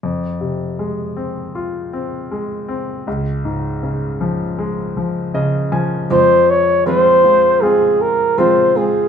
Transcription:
X:1
M:4/4
L:1/8
Q:1/4=79
K:Fm
V:1 name="Flugelhorn"
z8 | z8 | c d c2 A B c A |]
V:2 name="Steel-string acoustic guitar"
z8 | z8 | [F,A,F]2 [F,A,CF] [A,CF]3 [F,A,CF] [A,CF] |]
V:3 name="Grand piano" clef=bass
F,, C, A, C F C A, C | D,, A,, D, F, A, F, [D,e] [F,a] | F,,2 [A,CF]2 [A,CF]2 [A,CF]2 |]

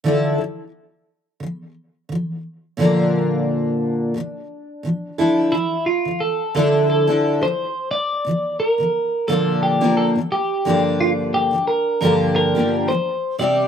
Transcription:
X:1
M:4/4
L:1/16
Q:"Swing 16ths" 1/4=88
K:Dm
V:1 name="Clean electric guitar"
z16 | z16 | E2 F2 A2 A2 A3 c3 d2- | d2 B4 A2 G2 A2 G3 z |
F2 G2 B2 B2 B3 c3 d2 |]
V:2 name="Steel-string acoustic guitar" clef=bass
[D,F,DEA]2 [D,F,]2 z4 [D,F,]2 z2 [D,F,]2 z2 | [B,,D,F,B,DB]8 [B,,D,F,]2 z2 [B,,D,F,]2 [D,F,DEA]2 | [D,F,]2 z [D,F,]2 z [D,F,DEA]3 [D,F,DEA]2 [D,F,]2 z3 | [B,,D,F,]2 z [B,,D,F,]2 z [B,,D,F,B,D]3 [B,,D,F,B,DB]2 [B,,D,F,]2 z [G,,D,F,B,DG]2- |
[G,,D,F,B,DG]3 [G,,D,F,]2 z [G,,D,F,B,DG]3 [G,,D,F,B,DG]2 [G,,D,F,]2 z [C,G,CDG]2 |]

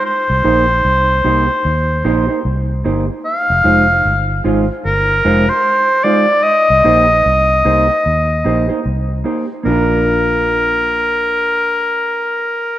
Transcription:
X:1
M:4/4
L:1/16
Q:"Swing 16ths" 1/4=75
K:Bbmix
V:1 name="Oboe"
c12 z4 | f6 z2 B3 c3 d2 | e12 z4 | B16 |]
V:2 name="Clean electric guitar"
z2 [B,EGc] z3 [B,EGc] z3 [B,EGc] [B,EGc] z2 [B,EGc] z | z2 [A,EFc] z3 [A,EFc] z3 [A,EFc] z3 [A,EFc] z | z2 [B,EGc] z3 [B,EGc] z3 [B,EGc] [B,EGc] z2 [B,EGc] z | [B,DFB]16 |]
V:3 name="Fingered electric bass" clef=bass
z C,, B,,,2 C,,2 C,, z E,,2 B,,, z C,,2 G,,, z | z F,,, F,,,2 G,,,2 A,,, z G,,,2 F,,, z4 z | z C,, B,,,2 C,,2 C,, z E,,2 B,,, z C,,2 z2 | B,,,16 |]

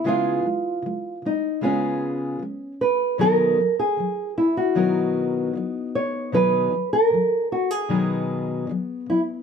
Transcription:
X:1
M:4/4
L:1/16
Q:1/4=76
K:B
V:1 name="Nylon-string guitar"
^E6 D2 C6 B2 | A3 G3 E F6- F c2 | B3 A3 F G6- G E2 |]
V:2 name="Steel-string acoustic guitar" clef=bass
[C,G,B,^EG]2 [C,G,]2 [C,G,]2 [C,G,]2 [C,G,B,EG]4 [C,G,]2 z2 | [B,,D,F,B,DA]2 [B,,D,F,]2 [B,,D,F,]2 z2 [B,,D,F,B,DA]4 [B,,D,F,]2 z2 | [B,,D,F,B,DG]2 [B,,D,F,]2 [B,,D,F,]2 z2 [B,,D,F,B,DG]4 [B,,D,F,]2 [B,,F,]2 |]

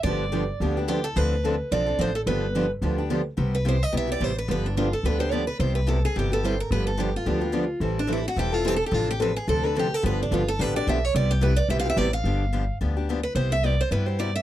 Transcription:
X:1
M:4/4
L:1/8
Q:"Swing" 1/4=216
K:C
V:1 name="Steel-string acoustic guitar"
d6 G A | B4 d2 c A | B3 z4 z | z B c _e =e d c B |
B D F A B c d B | c B A _A G =A c _B | B A G F4- F | z D E ^F G =F (3G A G |
F G B _A =A B G A | B D F A B d e _d | d G B d (3e f e d f- | f4 z3 B |
c e d c B c d e |]
V:2 name="Steel-string acoustic guitar"
[D,F,B,DG] z [D,F,B,DG] z [D,F,B,DG] [B,DG] [D,F,B,DG] z | [D,F,CDA] z [D,F,CDA] z [D,F,CDA] [CDA] [D,F,CDA] z | [D,F,B,DG] z [D,F,B,DG] z [D,F,B,DG] [B,DG] [D,F,B,DG] z | [C,G,B,EG] z [C,G,B,EG] z [C,G,B,EG] [B,EG] [C,G,B,EG] z |
[D,F,B,DG] z [D,F,B,DG] z [D,F,B,DG] [B,DG] [D,F,B,DG] z | [C,G,B,EG] z [C,G,B,EG] z [C,G,B,EG] [B,EG] [C,G,B,EG] z | [D,F,B,DG] z [D,F,B,DG] z [D,F,B,DG] [B,DG] [D,F,B,DG] z | [E,G,CEA] z [E,G,CEA] z [E,G,CEA] [CEA] [E,G,CEA] z |
[C,F,CDA] z [C,F,CDA] z [C,F,CDA] [CDA] [C,F,CDA] z | [D,F,B,DG] z [D,F,B,DG] z [D,F,B,DG] [B,DG] [D,F,B,DG] z | [C,G,B,EG] z [C,G,B,EG] z [C,G,B,EG] [B,EG] [C,G,B,EG] z | [D,F,B,DG] z [D,F,B,DG] z [D,F,B,DG] [B,DG] [D,F,B,DG] z |
[C,G,B,EG] z [C,G,B,EG] z [C,G,B,EG] [B,EG] [C,G,B,EG] z |]
V:3 name="Steel-string acoustic guitar"
[D,F,B,DG] z [D,F,B,DG] z [D,F,B,DG] z [D,F,B,DG] z | [D,F,CDA] z [D,F,CDA] z [D,F,CDA] z [D,F,CDA] z | [D,F,B,DG] z [D,F,B,DG] z [D,F,B,DG] z [D,F,B,DG] z | [C,G,B,EG] z [C,G,B,EG] z [C,G,B,EG] z [C,G,B,EG] z |
[D,F,B,DG] z [D,F,B,DG] z [D,F,B,DG] z [D,F,B,DG] z | [C,G,B,EG] z [C,G,B,EG] z [C,G,B,EG] z [C,G,B,EG] z | [D,F,B,DG] z [D,F,B,DG] z [D,F,B,DG] z [D,F,B,DG] z | [E,G,CEA] z [E,G,CEA] z [E,G,CEA] z [E,G,CEA] z |
[C,F,CDA] z [C,F,CDA] z [C,F,CDA] z [C,F,CDA] z | [D,F,B,DG] z [D,F,B,DG] z [D,F,B,DG] z [D,F,B,DG] z | [C,G,B,EG] z [C,G,B,EG] z [C,G,B,EG] z [C,G,B,EG] z | z8 |
z8 |]
V:4 name="Upright bass" clef=bass
G,,,4 D,,4 | D,,4 B,,,2 A,,,2 | G,,,4 D,,4 | C,,4 B,,,2 A,,,2 |
G,,,4 D,,4 | C,,4 G,,,4 | G,,,4 D,,4 | A,,,4 E,,,4 |
A,,,4 D,,4 | G,,,2 G,,,2 A,,,2 B,,,2 | C,,4 B,,,2 A,,,2 | G,,,4 D,,4 |
C,,4 G,,4 |]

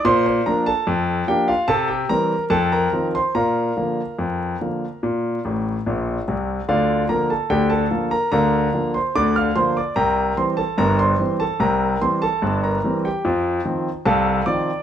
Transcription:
X:1
M:2/4
L:1/16
Q:1/4=73
K:Bb
V:1 name="Grand piano"
[cc'] [cc'] [Bb] [Aa]3 [Gg] [Ff] | [Aa] [Gg] [Bb]2 [Aa] [Bb]2 [cc'] | [Bfb]8- | [Bfb]6 z2 |
[Fdf]2 [Bb] [Aa] [Gg] [Aa]2 [Bb] | [Bfb]3 [cc'] [dd'] [ff'] [cc'] [dd'] | [Bgb]2 [cc'] [Aa] [Bb] [cc']2 [Aa] | [Bgb]2 [cc'] [Aa]2 [Bb]2 [Gg] |
z4 [Afa]2 [dd']2 |]
V:2 name="Grand piano" clef=bass
B,,2 [F,B,D]2 F,,2 [F,B,D]2 | C,2 [=E,G,C]2 F,,2 [_E,F,C]2 | B,,2 [D,F,B,]2 F,,2 [D,F,B,]2 | B,,2 [A,,,A,,]2 [B,,,B,,]2 [C,,C,]2 |
[D,,D,]2 [D,F,B,]2 [D,,D,]2 [D,F,B,]2 | [D,,D,]2 [D,F,B,]2 [D,,D,]2 [D,F,B,]2 | [C,,C,]2 [=E,G,C]2 [G,,,G,,]2 [E,G,C]2 | [C,,C,]2 [=E,G,C]2 [G,,,G,,]2 [E,G,C]2 |
[F,,F,]2 [E,F,C]2 [C,,C,]2 [E,F,C]2 |]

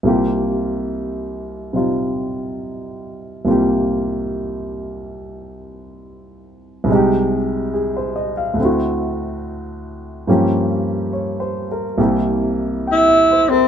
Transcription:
X:1
M:4/4
L:1/16
Q:"Swing" 1/4=70
K:Cphr
V:1 name="Grand piano"
z16 | z16 | z4 A c e f z8 | z4 (3d2 c2 B2- B z3 g =e c B |]
V:2 name="Grand piano"
[C,,C,B,FG]8 [C,G,EF]8 | [C,,C,B,FG]16 | [C,,C,A,EG]8 [=D,,=D,C=E^F]8 | [G,,F,B,DG]8 [C,,C,B,=EG]8 |]
V:3 name="Tenor saxophone"
z16 | z16 | z16 | z12 =E2 C2 |]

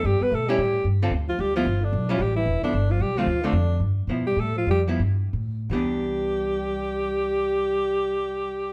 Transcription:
X:1
M:4/4
L:1/8
Q:"Swing" 1/4=218
K:C
V:1 name="Alto saxophone"
G B A G3 z2 | z F G F2 D2 F | G E2 D2 F G F- | F D3 z3 G |
A F G z4 z | G8- | G8 |]
V:2 name="Hollow-body jazz guitar"
z3 [G,_DE] z3 [=D,CFA] | z3 [F,B,E] z3 [G,_DE] | z3 [F,B,E] z3 [D,A,CF] | z [D,A,CF] z4 [F,B,E] z |
z3 [F,B,E] z4 | [E,B,D]8- | [E,B,D]8 |]
V:3 name="Trombone" clef=bass
G, B, A, G,3 z2 | z F, G, F,2 D,2 F, | G, E,2 D,2 F, G, F,- | F, D,3 z3 G, |
A, F, G, z4 z | G,8- | G,8 |]
V:4 name="Upright bass" clef=bass
G,, z B,,2 A,,2 G,,2 | D,,2 D,,2 G,,,2 B,,,2 | A,,,2 E,,, z G,,,2 B,,,2 | D,,2 F,,2 G,,2 B,,2 |
A,,2 F,,2 G,,2 A,,2 | C,,8- | C,,8 |]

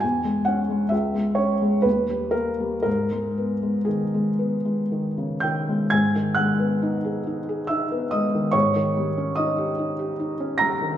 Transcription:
X:1
M:3/4
L:1/16
Q:1/4=67
K:G#m
V:1 name="Felt piano"
g2 f2 e2 c2 B2 A2 | A4 G6 [=g=g']2 | [gg']2 [ff']6 [ee']2 [dd']2 | [cc']4 [dd']6 [aa']2 |]
V:2 name="Felt piano" clef=bass
E,, G, C G, C,, G, C G, D,, =G, A, G, | G,, G, B, G, D, G, B, G, D, C, D, G, | G,, D, G, B, D G D G D B, G, D, | G,, D, =G, C D =G D G D C G, D, |]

